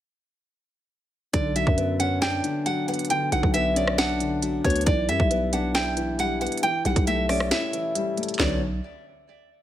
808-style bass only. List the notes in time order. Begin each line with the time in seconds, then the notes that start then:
1.34 B1
1.67 F#2
3.32 B1
3.43 B1
4.64 D2
4.87 B1
5.09 F#2
5.20 B1
6.85 B1
6.96 B1
8.40 B1